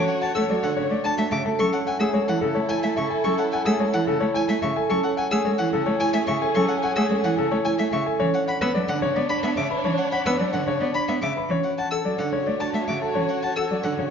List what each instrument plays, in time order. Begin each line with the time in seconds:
Already playing: marimba C#4, string section F#4 C#5, grand piano C#5
0.08 marimba C#5, violin F#5
0.21 grand piano F#5, violin A5
0.35 cello A3, grand piano A4, marimba C#5, violin E6
0.50 cello F#3, marimba A4, grand piano D5
0.63 cello D3, marimba D4, violin F#5
0.77 cello C#3, grand piano C#5
0.91 cello A3, grand piano D5
1.04 marimba D4, grand piano A5, violin A5
1.18 cello A3, violin E5
1.31 cello C#3, grand piano E5, violin D6
1.45 cello A3, marimba A4, grand piano A5
1.59 cello F#3, marimba C#4, string section E4 A4, grand piano A4, violin C#6
1.73 marimba C#5, violin F#5
1.87 grand piano F#5, violin G#5
2.00 cello A3, grand piano G#4, marimba C#5, violin E6
2.14 cello G#3, marimba A4, grand piano C#5
2.28 cello E3, marimba E4, violin F#5
2.41 cello C#3, grand piano A4
2.55 cello A3, grand piano C#5
2.69 marimba E4, grand piano G#5, violin G#5
2.83 cello A3, violin E5
2.96 cello C#3, grand piano E5, violin C#6
3.10 marimba A4, grand piano G#5
3.24 cello F#3, marimba C#4, grand piano A4, violin C#6
3.38 marimba C#5, violin F#5
3.52 grand piano F#5, violin G#5
3.65 cello A3, grand piano G#4, marimba C#5, violin E6
3.80 cello G#3, marimba A4, grand piano C#5
3.93 cello E3, marimba E4, violin F#5
4.07 cello C#3, grand piano A4
4.20 cello A3, grand piano C#5
4.34 marimba E4, grand piano G#5, violin G#5
4.49 cello A3, violin E5
4.62 cello C#3, grand piano E5, violin C#6
4.76 marimba A4, grand piano G#5
4.89 cello F#3, string section C#4 G#4, marimba C#4, grand piano A4, violin C#6
5.04 marimba C#5, violin F#5
5.17 grand piano F#5, violin G#5
5.31 cello A3, grand piano G#4, marimba C#5, violin E6
5.45 cello G#3, marimba A4, grand piano C#5
5.58 cello E3, marimba E4, violin F#5
5.73 cello C#3, grand piano A4
5.86 cello A3, grand piano C#5
6.00 marimba E4, violin G#5, grand piano G#5
6.13 cello A3, violin E5
6.27 cello C#3, grand piano E5, violin C#6
6.42 marimba A4, grand piano G#5
6.55 cello F#3, marimba C#4, grand piano A4, violin C#6
6.68 marimba C#5, violin F#5
6.82 grand piano F#5, violin G#5
6.96 cello A3, grand piano G#4, marimba C#5, violin E6
7.10 cello G#3, marimba A4, grand piano C#5
7.24 cello E3, marimba E4, violin F#5
7.37 cello C#3, grand piano A4
7.51 cello A3, grand piano C#5
7.65 marimba E4, violin G#5, grand piano G#5
7.78 cello A3, violin E5
7.92 cello C#3, grand piano E5, violin C#6
8.06 marimba A4, grand piano G#5
8.20 cello E3, marimba C#4, string section D4 C#5, grand piano C#5
8.34 marimba C#5, violin F#5
8.47 grand piano F#5, violin B5
8.61 cello B3, grand piano B4, marimba C#5, violin E6
8.74 cello F#3, marimba B4, grand piano D5
8.88 cello D3, marimba D4, violin F#5
9.02 cello C#3, grand piano C#5
9.16 cello B3, grand piano D5
9.29 marimba D4, violin B5, grand piano B5
9.43 cello B3, violin E5
9.57 cello C#3, grand piano E5, violin D6
9.70 marimba B4, grand piano B5
9.85 cello E3, marimba C#4, grand piano C#5
9.98 marimba C#5, violin F#5
10.12 grand piano F#5, violin B5
10.26 cello B3, grand piano B4, marimba C#5, violin E6
10.39 cello F#3, marimba B4, grand piano D5
10.53 cello D3, marimba D4, violin F#5
10.67 cello C#3, grand piano C#5
10.81 cello B3, grand piano D5
10.94 marimba D4, violin B5, grand piano B5
11.08 cello B3, violin E5
11.22 cello C#3, grand piano E5, violin D6
11.36 marimba B4, grand piano B5
11.49 cello E3, marimba C#4, string section F#4 C#5, grand piano C#5
11.64 marimba C#5, violin F#5
11.78 grand piano F#5, violin A5
11.91 grand piano A4, violin E6
12.05 cello F#3, marimba A4, grand piano D5
12.19 cello D3, marimba D4, violin F#5
12.33 cello C#3, grand piano C#5
12.46 cello A3, grand piano D5
12.60 marimba D4, grand piano A5, violin A5
12.74 cello A3, violin E5
12.88 cello C#3, grand piano E5, violin D6
13.01 marimba A4, grand piano A5
13.15 cello E3, marimba C#4, grand piano C#5
13.29 marimba C#5, violin F#5
13.43 grand piano F#5, violin A5
13.56 grand piano A4, violin E6
13.70 cello F#3, marimba A4, grand piano D5
13.83 cello D3, marimba D4, violin F#5
13.98 cello C#3, grand piano C#5